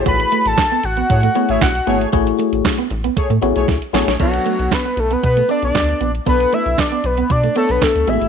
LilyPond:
<<
  \new Staff \with { instrumentName = "Analog synth lead" } { \time 4/4 \key b \dorian \tempo 4 = 116 b''8. a''8. fis''4~ fis''16 e''16 fis''8. r16 | r1 | fis'4 b'8 a'16 b'16 b'8 d''16 d''4 r16 | b'8 e''8 d''8 b'8 d''8 a'16 b'16 a'8 e''8 | }
  \new Staff \with { instrumentName = "Analog polysynth" } { \time 4/4 \key b \dorian <a gis' cis''>16 r4. r16 <a gis' cis''>16 r8 <a gis' cis''>16 r8 <a gis' cis''>8 | r2 <a gis' cis''>16 r8 <a gis' cis''>16 r8 <a gis' cis''>8 | r1 | r1 | }
  \new Staff \with { instrumentName = "FM electric piano" } { \time 4/4 \key b \dorian <a e' fis' gis' cis''>4 r4. <a e' fis' gis' cis''>8 r8 <a e' fis' gis' cis''>8 | <a e' fis' gis' cis''>4~ <a e' fis' gis' cis''>16 r4 r16 <a e' fis' gis' cis''>8 r8 <a e' fis' gis' cis''>8 | <b d' a' cis''>4~ <b d' a' cis''>16 r4 r16 <b d' a' d''>4 r8 | <b d' a' b'>4~ <b d' a' b'>16 r4 r16 <b d' a' cis''>4 <gis a fis' gis' e''>8 | }
  \new Staff \with { instrumentName = "Clean electric guitar" } { \time 4/4 \key b \dorian fis'16 r16 a16 r8 b16 r16 b16 r16 a16 b16 r8. b16 r16 | fis'16 r16 a16 r8 b16 r16 b16 r16 a16 b16 r8. b16 r16 | b16 r16 a16 r8 b16 r16 b16 r16 a16 b16 r8. b16 r16 | b16 r16 a16 r8 b16 r16 b16 r16 a16 b16 r8. b16 r16 | }
  \new Staff \with { instrumentName = "Analog synth bass" } { \clef bass \time 4/4 \key b \dorian a,,8 r16 a,,16 r8 a,,8 a,8 r16 a,,16 b,,8 gis,,8 | a,,8 r16 a,,16 r8 a,,8 r16 a,16 a,,16 b,,16 cis,16 r16 a,,16 ais,,16 | b,,8 r16 b,,16 r8 b,,8 b,8 r16 b,,16 d,8 ais,,8 | b,,8 r16 b,,16 r8 b,,8 b,8 r16 b,,16 r16 d,16 a,,16 gis,,16 | }
  \new DrumStaff \with { instrumentName = "Drums" } \drummode { \time 4/4 <hh bd>16 hh16 hh16 hh16 <hc hh bd sn>16 hh16 hh16 hh16 <hh bd>16 hh16 hh16 hh16 <hc hh bd sn>16 hh16 hh16 hh16 | <hh bd>16 hh16 hh16 hh16 <hc hh bd sn>16 hh16 hh16 hh16 <hh bd>16 hh16 hh16 hh16 <hh bd sn>16 hh16 <hho sn>16 <hh sn>16 | <cymc hh bd>16 hh16 hh16 hh16 <hc hh bd sn>16 hh16 hh16 hh16 <hh bd>16 hh16 hh16 hh16 <hc hh bd sn>16 hh16 hh16 hh16 | <hh bd>16 hh16 hh16 hh16 <hc hh bd sn>16 hh16 hh16 hh16 <hh bd>16 hh16 hh16 hh16 <hc hh bd sn>16 hh16 hh16 hh16 | }
>>